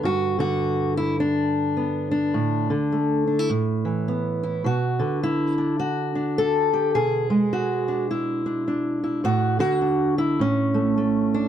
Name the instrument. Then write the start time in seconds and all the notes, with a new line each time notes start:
steel-string acoustic guitar
Already playing: D3
0.03 G2 F#4
0.39 D3 F#4
0.97 E4
1.20 D4
1.77 B3
2.11 D4
2.34 A2
2.70 D3
2.92 A3
3.27 D4
3.39 E4
3.50 A2
3.85 E3
4.08 B3
4.43 E4
4.64 B2 F#4
4.99 D3
5.23 E4
5.58 D4
5.79 F#4
6.15 D4
6.38 A4
6.73 G4
6.95 B2 G#4
7.30 G#3
7.53 F#4
7.88 D4
8.11 E4
8.46 D4
8.68 D4
9.04 E4
9.24 A2 F#4
9.59 D3 F#4
9.82 D4
10.18 E4
10.39 A2 C#4
10.74 A3
10.98 A3
11.34 D4